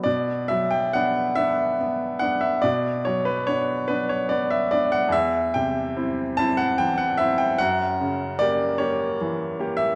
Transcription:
<<
  \new Staff \with { instrumentName = "Grand piano" } { \time 12/8 \key b \minor \tempo 4. = 48 d''8 e''16 g''16 fis''8 e''4 fis''16 e''16 d''8 cis''16 b'16 cis''8 b'16 cis''16 d''16 e''16 d''16 fis''16 | e''8 g''4 a''16 fis''16 g''16 fis''16 e''16 g''16 fis''4 d''8 cis''4~ cis''16 e''16 | }
  \new Staff \with { instrumentName = "Grand piano" } { \time 12/8 \key b \minor b,8 fis8 <b d'>8 <b d'>8 b8 <b d'>8 b,8 fis8 <b d'>8 <b d'>8 b8 <b d'>8 | e,8 c8 <c' e'>8 <c' e'>8 e8 <c' e'>8 fis,8 cis8 <ais g'>8 <ais g'>8 e8 <ais g'>8 | }
>>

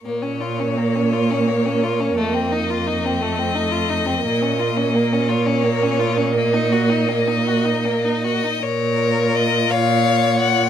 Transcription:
<<
  \new Staff \with { instrumentName = "Violin" } { \time 6/8 \key bes \minor \tempo 4. = 57 des''2. | ees''2.~ | ees''4. des''4. | ees''2~ ees''8 ees''8 |
des''4 ees''8 f''4 ges''8 | }
  \new Staff \with { instrumentName = "Violin" } { \time 6/8 \key bes \minor bes16 des'16 f'16 des'16 bes16 des'16 f'16 des'16 bes16 des'16 f'16 des'16 | a16 c'16 ees'16 f'16 ees'16 c'16 a16 c'16 ees'16 f'16 ees'16 c'16 | bes16 des'16 f'16 des'16 bes16 des'16 f'16 des'16 bes16 des'16 f'16 des'16 | bes16 ees'16 ges'16 ees'16 bes16 ees'16 ges'16 ees'16 bes16 ees'16 ges'16 ees'16 |
bes'4. des''4. | }
  \new Staff \with { instrumentName = "Viola" } { \time 6/8 \key bes \minor bes2.~ | bes4. a4. | bes2.~ | bes2~ bes8 r8 |
r8 f'4. f'4 | }
  \new Staff \with { instrumentName = "Cello" } { \clef bass \time 6/8 \key bes \minor bes,2. | f,2. | bes,2.~ | bes,2~ bes,8 r8 |
bes,4. bes,4. | }
>>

